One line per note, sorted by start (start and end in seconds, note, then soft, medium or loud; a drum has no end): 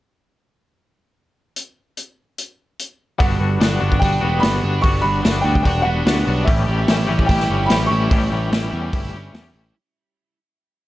1.56 closed hi-hat medium
1.97 closed hi-hat medium
2.38 closed hi-hat medium
2.79 closed hi-hat medium
3.18 3.37 G1 medium
3.18 4.23 G2 medium
3.18 3.60 G3 medium
3.18 3.43 B3 medium
3.18 3.41 D4 medium
3.18 3.39 F#4 medium
3.18 3.97 F#5 medium
3.18 kick loud
3.18 open hi-hat soft
3.40 3.56 G1 medium
3.40 3.61 B3 medium
3.40 3.62 D4 medium
3.40 3.63 F#4 medium
3.61 3.77 G1 medium
3.61 3.83 G3 medium
3.61 3.82 B3 medium
3.61 3.81 D4 medium
3.61 3.80 F#4 medium
3.61 snare loud
3.61 open hi-hat medium
3.80 3.98 G1 medium
3.80 4.01 G3 medium
3.80 4.01 B3 medium
3.80 4.02 D4 medium
3.80 4.03 F#4 medium
3.92 kick medium
3.99 4.18 G1 medium
3.99 4.41 G3 medium
3.99 4.23 B3 medium
3.99 4.21 D4 medium
3.99 4.43 G5 medium
3.99 kick medium
3.99 open hi-hat medium
4.04 4.20 F#4 medium
4.21 4.39 E1 medium
4.21 4.41 B3 medium
4.21 4.42 D4 medium
4.21 4.43 F#4 medium
4.40 4.82 G3 medium
4.40 4.63 B3 medium
4.40 4.62 D4 medium
4.40 4.84 B5 medium
4.40 snare loud
4.40 open hi-hat medium
4.44 4.60 G1 medium
4.44 4.60 F#4 medium
4.61 4.80 G1 medium
4.61 4.82 B3 medium
4.61 4.83 D4 medium
4.61 4.84 F#4 medium
4.82 5.00 G1 medium
4.82 5.86 G2 medium
4.82 5.22 G3 medium
4.82 5.04 B3 medium
4.82 5.03 D4 medium
4.82 5.01 F#4 medium
4.82 5.04 C#6 loud
4.82 kick loud
4.82 open hi-hat medium
5.01 5.21 G1 medium
5.01 5.22 B3 medium
5.01 5.24 D4 medium
5.01 5.24 F#4 medium
5.01 5.41 B5 medium
5.22 5.41 G1 medium
5.22 5.46 G3 medium
5.22 5.45 B3 medium
5.22 5.43 D4 medium
5.22 5.43 F#4 medium
5.22 snare loud
5.22 open hi-hat soft
5.41 5.61 D2 medium
5.41 5.66 D4 medium
5.41 5.66 F#4 medium
5.41 5.61 G5 medium
5.46 5.64 G3 medium
5.46 5.65 B3 medium
5.55 kick medium
5.63 5.82 E1 medium
5.63 6.05 G3 medium
5.63 5.87 B3 medium
5.63 5.85 D4 medium
5.63 5.83 G5 medium
5.63 kick medium
5.63 open hi-hat medium
5.67 5.84 F#4 medium
5.82 6.02 E1 medium
5.82 6.07 F#4 medium
5.82 6.22 F#5 medium
5.87 6.05 B3 medium
5.87 6.06 D4 medium
6.05 6.23 D2 medium
6.05 6.46 G3 medium
6.05 6.28 B3 medium
6.05 6.27 D4 loud
6.05 6.25 F#4 medium
6.05 snare loud
6.05 open hi-hat medium
6.26 6.43 B1 medium
6.26 6.47 B3 medium
6.26 6.47 D4 medium
6.26 6.46 F#4 medium
6.44 6.64 A1 medium
6.44 6.91 A2 medium
6.44 6.87 E3 medium
6.44 6.69 G3 medium
6.44 6.68 C#4 medium
6.44 7.30 E5 medium
6.44 kick loud
6.44 open hi-hat medium
6.49 6.66 G4 medium
6.66 6.84 A1 medium
6.66 6.88 G3 medium
6.66 6.89 C#4 medium
6.66 6.90 G4 medium
6.87 7.05 A1 medium
6.87 7.09 E3 medium
6.87 7.08 G3 medium
6.87 7.08 C#4 medium
6.87 7.29 E4 medium
6.87 7.07 G4 medium
6.87 snare loud
6.87 open hi-hat soft
7.07 7.25 A1 medium
7.07 7.51 A2 medium
7.07 7.27 E3 medium
7.07 7.28 G3 medium
7.07 7.30 C#4 medium
7.07 7.30 G4 medium
7.19 kick medium
7.26 7.46 A1 medium
7.26 7.69 E3 medium
7.26 7.51 G3 medium
7.26 7.49 C#4 medium
7.26 7.90 E4 medium
7.26 7.70 G5 medium
7.26 kick loud
7.26 open hi-hat medium
7.31 7.47 G4 medium
7.40 snare soft
7.48 7.66 G1 medium
7.48 7.70 G3 medium
7.48 7.71 C#4 medium
7.48 7.71 G4 medium
7.66 8.09 A2 medium
7.66 8.09 E3 medium
7.66 7.89 B5 medium
7.66 open hi-hat medium
7.70 7.87 A1 medium
7.70 7.91 G3 medium
7.70 7.90 C#4 medium
7.70 7.88 G4 medium
7.70 snare loud
7.86 8.11 G4 medium
7.86 9.28 C#6 loud
7.90 8.07 A1 medium
7.90 8.09 G3 medium
7.90 8.10 C#4 medium
7.90 8.51 E4 medium
8.09 8.28 A1 loud
8.09 8.51 A2 medium
8.09 8.50 E3 medium
8.09 8.32 G3 loud
8.09 8.31 C#4 medium
8.09 8.29 G4 loud
8.09 kick loud
8.09 open hi-hat medium
8.30 8.48 A1 medium
8.30 8.51 G3 medium
8.30 8.52 C#4 medium
8.30 8.53 G4 medium
8.51 8.68 A1 medium
8.51 8.72 E3 medium
8.51 8.71 G3 medium
8.51 8.71 C#4 medium
8.51 8.92 E4 medium
8.51 8.70 G4 medium
8.51 snare loud
8.51 open hi-hat medium
8.71 8.89 E2 medium
8.71 9.14 A2 medium
8.71 8.91 E3 medium
8.71 8.92 G3 medium
8.71 8.93 C#4 medium
8.71 8.94 G4 medium
8.93 9.10 G1 medium
8.93 9.32 E3 medium
8.93 9.15 G3 medium
8.93 9.14 C#4 medium
8.93 9.54 E4 medium
8.93 9.12 G4 medium
8.93 kick loud
8.93 open hi-hat medium
9.13 9.29 G1 medium
9.13 9.33 G3 medium
9.13 9.34 C#4 medium
9.13 9.35 G4 medium
9.32 9.50 E2 medium
9.32 9.73 A2 medium
9.32 9.74 E3 medium
9.32 9.56 G3 loud
9.32 9.54 C#4 medium
9.32 9.52 G4 loud
9.32 snare loud
9.32 open hi-hat medium
9.54 9.71 A1 medium
9.54 9.75 G3 medium
9.54 9.75 C#4 medium
9.54 9.75 E4 medium
9.54 9.74 G4 medium